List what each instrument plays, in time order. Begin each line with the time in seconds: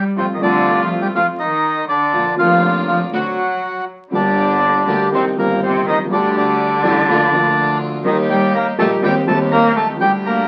0.17 grand piano F2 C3 F3 A3 F4, double bass F2, cello C3, string section A3 C4 F4, bandoneon C4 C5
0.34 cello D#3, bandoneon D#5
0.39 double bass C2, grand piano C2 C3 F3 A3 F4, cello D3, string section A3 C4 F4, bandoneon D5
0.43 bandoneon D4
0.81 cello F3, bandoneon F4 F5
1.02 cello G3, bandoneon G4 G5
1.14 double bass F2, grand piano F2 C3 F3 A3 F4, cello F3, string section A3 C4 F4, bandoneon F4 F5
1.39 cello D#3, bandoneon D#4 D#5
1.87 cello D3, bandoneon D4 D5
2.13 grand piano A#1 A#2 D3 F3 A#3 F4, double bass A#1, string section A#3 D4 F4
2.36 double bass F1, grand piano F1 F2 D3 F3 A#3, cello F3, string section A#3 D4 F4, bandoneon F4 F5
2.40 grand piano F4
2.87 cello F3, bandoneon F4 F5
3.11 double bass D2, grand piano D2 D3 A3 C4 F#4, cello F#3, string section C4 D4 F#4, bandoneon F#4 F#5
4.11 grand piano G1 G2 D3 G3 A#3, double bass G1, cello D3, string section A#3 D4 G4, bandoneon D4 D5
4.15 grand piano G4
4.87 double bass D2, grand piano D2 D3 G3 A#3 G4, string section A#3 D4 G4
5.12 grand piano C2 C3 D#3 A#3 C4 G4, double bass C2, cello C3, string section A#3 C4 D#4, bandoneon C4 C5
5.36 double bass G1, grand piano G1 G2 D#3 A#3 C4 G4, cello A#2, string section A#3 C4 D#4, bandoneon A#3 A#4
5.62 cello C3, bandoneon C4 C5
5.86 double bass C2, cello D#3, bandoneon D#4 D#5
5.92 grand piano B1
5.99 grand piano C2
6.05 grand piano C#2
6.10 grand piano D2 D3 G3 A3 G4, double bass D2, cello D3, string section A3 D4 G4, bandoneon D4 D5
6.36 cello D3, bandoneon D4 D5
6.83 grand piano A1 A2 D3 G3 A3 G4, double bass A1, string section A3 D4 G4
7.08 double bass D2, grand piano D2 D3 F3 A#3 F4, string section A#3 D4 F4
7.31 grand piano D2 D3 F3 A#3 F4, double bass D2, string section A#3 D4 F4
8.03 grand piano D#2 D#3 G3 A#3 G4, double bass D#2, cello D#3, string section A#3 D#4 G4, bandoneon D#4 D#5
8.29 cello G3, bandoneon G4 G5
8.54 cello A#3, bandoneon A#4 A#5
8.78 double bass A#1, grand piano A#1 A#2 D#3 G3 A#3 G4, cello A3, string section A#3 D#4 G4, bandoneon A4 A5
9.02 grand piano D#2 D#3 G3 C4 G4, double bass D#2, cello G3, string section C4 D#4 G4, bandoneon G4 G5
9.25 grand piano D#2 D#3 G3 C4 G4, double bass D#2, cello A3, string section C4 D#4 G4, bandoneon A4 A5
9.52 cello A#3, bandoneon A#4 A#5
9.76 double bass C2, cello A3, bandoneon A4 A5
9.82 grand piano B1
9.89 grand piano C2
9.95 grand piano C#2
10.00 double bass D2, grand piano D2 D3 G3 A3 D4 A4, cello G3, string section A3 D4 G4, bandoneon G4 G5
10.26 cello A#3, bandoneon A#4 A#5